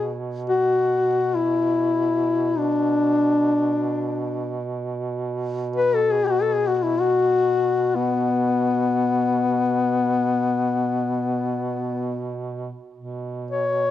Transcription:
duduk
Already playing: B2 G#4
0.49 F#4
1.36 E4
2.58 D4
5.76 B4
5.95 A4
6.11 G#4
6.27 F#4
6.42 A4
6.54 G#4
6.67 F#4
6.76 F#4
6.83 E4
7.00 F#4
7.95 B3
12.94 B2
13.51 C#5

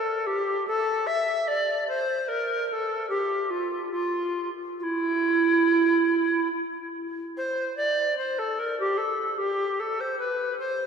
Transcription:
recorder
Already playing: A4
0.26 G4
0.67 A4
1.06 E5
1.47 D5
1.88 C5
2.28 A#4
2.67 A#4
2.72 A4
3.09 G4
3.50 F4
3.91 F4
4.79 E4 F4
7.37 C5
7.77 D5
8.17 C5
8.38 A4
8.59 A#4
8.79 G4
8.97 A4
9.38 G4
9.79 A4
10.00 C5
10.18 B4
10.59 C5

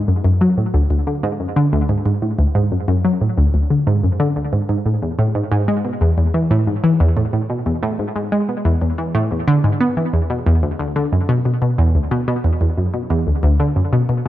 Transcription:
synth arpeggio sound
0.08 F#2
0.25 F#2
0.41 F#3
0.58 A2
0.74 D2
0.90 D2
1.07 D3
1.23 G#2
1.40 F#2
1.56 D3
1.73 D2
1.89 G#2
2.06 G#2
2.22 A2
2.39 D2
2.55 G#2
2.72 F#2
2.88 F#2
3.05 F#3
3.21 A2
3.38 D2
3.54 D2
3.70 D3
3.87 G#2
4.03 F#2
4.20 D3
4.36 D2
4.53 G#2
4.69 G#2
4.86 A2
5.02 E2
5.19 A2
5.35 G#2
5.52 G#2
5.68 G#3
5.85 B2
6.01 E2
6.18 E2
6.34 E3
6.51 A2
6.67 G#2
6.84 E3
7.00 E2
7.17 A2
7.33 A2
7.50 B2
7.66 E2
7.83 A2
7.99 G#2
8.16 G#2
8.32 G#3
8.49 B2
8.65 E2
8.82 E2
8.98 E3
9.15 A2
9.31 E2
9.48 D3
9.64 G#2
9.80 B3
9.97 E3
10.13 E2
10.30 B2
10.46 E2
10.63 D2
10.79 D2
10.96 D3
11.13 F#2
11.29 B2
11.45 B2
11.62 B2
11.78 E2
11.95 D2
12.11 B2
12.28 B2
12.44 E2
12.61 E2
12.77 F#2
12.94 B2
13.10 E2
13.27 D2
13.43 D2
13.60 D3
13.76 F#2
13.93 B2
14.09 B2

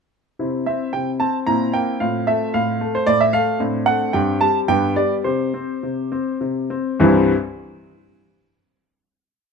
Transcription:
grand piano
0.39 C3 C4 E4
0.66 C4 E5
0.93 C3 G5
1.20 C4 A5
1.47 A#2 C4 E4 A#5
1.74 A#3 G5
2.00 A2 C4 F4 F5
2.27 A3 E5
2.54 A2 F5
2.81 A3
2.95 C5
3.07 A2 D5
3.21 E5
3.33 A3 F5
3.60 A2 C4 D4
3.86 A3 F#5
4.13 G2 C4 G4 G5
4.41 G3 A5
4.68 G2 B3 G4 G5
4.96 G3 D5
5.24 C3 C4 G4 C5
5.54 C4
5.83 C3
6.12 C4
6.41 C3
6.70 C4
6.99 C2 G2 E3 G3 C4 E4

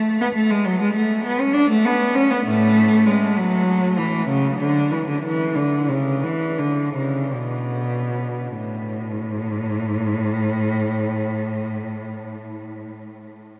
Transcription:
cello
Already playing: A3
0.21 B3
0.35 A3
0.51 G#3
0.65 F#3
0.81 G#3
0.95 A3
1.25 B3
1.41 C#4
1.54 D4
1.70 A3
1.86 B3
2.15 C#4
2.31 B3
2.45 A2 A3
3.07 G#3
3.37 F#3
3.98 E3
4.29 C#3
4.59 D3
4.91 E3
5.08 D3
5.23 E3
5.55 D3
5.90 C#3
6.23 E3
6.59 D3
6.96 C#3
7.34 B2
8.57 A2

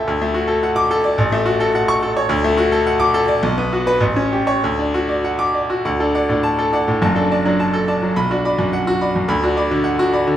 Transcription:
grand piano
0.07 D2
0.22 A3
0.34 F#4
0.48 A4
0.63 F#5
0.76 D6
0.91 A4
1.04 D5
1.18 A1
1.32 A3
1.46 F#4
1.60 A4
1.75 F#5
1.88 C#6
2.02 A4
2.17 C#5
2.29 D2
2.44 A3
2.57 F#4
2.72 A4
2.87 F#5
3.00 D6
3.14 A4
3.28 D5
3.43 B1
3.58 B3
3.73 F#4
3.87 B4
4.00 A1
4.16 C#4
4.32 G4
4.47 C#5
4.64 D2
4.79 D4
4.94 F#4
5.09 D5
5.24 F#5
5.39 D6
5.54 D5
5.70 F#4
5.85 D2 F#5
6.00 D4 A4
6.15 D5 F#5
6.29 A2 D4
6.43 A5
6.59 A4
6.73 D5 F#5
6.88 A2
7.02 F#1 F#2 A5
7.16 D4 A4
7.31 D5 A5
7.45 F#3 D4
7.60 A5
7.73 A4
7.88 D5 A5
8.02 F#3
8.16 B1 B5
8.31 D4 F#4
8.45 D5 B5
8.58 F#2 D4
8.73 F#5
8.87 F#4
9.01 D5 B5
9.16 F#2
9.28 D2 B5
9.43 D4 F#4
9.57 D5 B5
9.71 D3 D4
9.84 F#5
9.99 F#4
10.13 D5 B5
10.27 D3

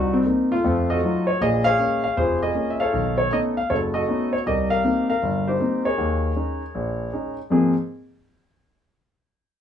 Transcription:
grand piano
Already playing: C2 D#4 F#4
0.13 C4
0.26 A#3 C4 D#4
0.52 A3 F4
0.64 F2 A3
0.90 F#4 A4 D#5
1.03 F#3 A3 D#4 F4
1.27 C#5
1.41 A#1 A#2 G#4 D#5
1.64 G#4 C#5 F5
1.78 G#3 A#3 C#4
2.04 F5
2.17 F1 F4 G#4 C5
2.42 G#4 D#5
2.54 G#3 A#3 C#4
2.70 E5
2.80 A4 C#5 F5
2.93 B1 D#3
3.18 C#5
3.31 A3 B3 C#4 D#4 D#5
3.57 F5
3.70 F#1 F#4 A4 C#5
3.94 F#4 A4 D#5
4.08 A3 B3 C#4 D#4
4.33 C#5
4.46 C2 G4 A#4 D#5
4.70 A#4 F5
4.84 A#3 C4 D#4
5.10 A#4 F5
5.22 G1
5.48 D#4 G4 C5
5.59 A#3 C4 D#4
5.85 G#4 A#4 C#5
5.98 D#2 D#3
6.35 G#3 C#4 D#4
6.75 A#1
7.13 G#3 C#4 D#4
7.50 G#2 F3 A#3 C4 G#4

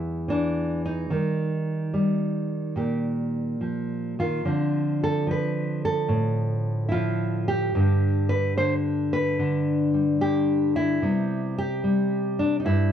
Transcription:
nylon-string guitar
Already playing: E2 G3 B3 E4
0.28 E3 D4
0.85 D#4
1.10 D#3 G3
1.94 G3
2.76 A#2 G4
3.61 F3
4.19 D#3 F4
4.45 D3 F3 C4 D4
5.03 A4
5.27 F3
5.31 B4
5.85 A4
6.09 A2
6.89 F3 E4 F4
7.48 G4
7.75 G2 D3 G3 D4
8.29 B4
8.57 D3 C5
9.13 B4
9.39 D3 D4
9.94 G3
10.21 D3 G4
10.76 E4
11.02 C3 G3 B3
11.58 G4
11.84 G3
12.39 D4
12.60 D#4
12.65 G2 E4

